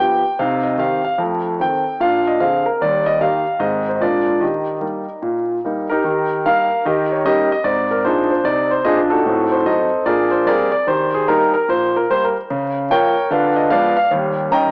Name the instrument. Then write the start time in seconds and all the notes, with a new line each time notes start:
grand piano
Already playing: F3
0.00 B3 G4 G5
0.39 C3 D#4 F5
0.63 D#5
0.77 D#3 C4 G4 F5
1.04 F5
1.18 F2 A3
1.60 D#3 C4 A4 G5
2.00 A#2 D4 F5
2.27 D#5
2.40 D3 C4 G#4 F5
2.66 A#4
2.81 D#2 G3 D5
3.06 D#5
3.20 D#3 A#3 G4 F5
3.59 G#2 D#3 C4 G#4 D#5
3.89 C5
3.96 D#5
4.00 A#2 G#3 A#3 D4 F4 D5
4.40 D#3 G4 D#5
4.80 G3 A#3 D#4
5.22 A#2
5.64 G3 A#3 D#4
5.89 D#4 G4 A#4
6.04 D#3 G4
6.45 G3 A#3 D#4 A#4 F5
6.85 D#3 G4 A#4 D#5
7.12 C#5
7.24 G3 C#4 D#4 G4 A#4 D#5
7.52 D#5
7.64 G#2 C4 D5
7.91 A#4
8.05 A#2 D4 D#4 G#4 C5
8.31 C5
8.44 C3 D#4 D5
8.71 C5
8.85 A#2 D4 G#4 C5 D#5
9.10 D#4 F#4 A4
9.26 A2 C4
9.52 C5
9.66 F#3 C4 D#4 A4 C5 D#5
10.06 A#2 D4 G#4 A#4 D5
10.31 C5
10.46 G3 A#3 C4 G#4 A#4 D5
10.72 D5
10.87 D#3 G4 C5
11.14 G#4
11.28 G3 A#3 D#4 G4 A#4
11.54 A#4
11.68 A#2 C5
11.96 A#4
12.10 G3 A#3 C5
12.24 A#4
12.50 C#3
12.90 F3 A#3 A#4 C#5 G5
13.30 D3 F4 B4 D5 F5
13.56 D#5
13.70 F3 G#3 B3 B4 D5 F5
13.97 F5
14.11 D#2 G3
14.51 D#3 G3 C#4 D#5 G5 A#5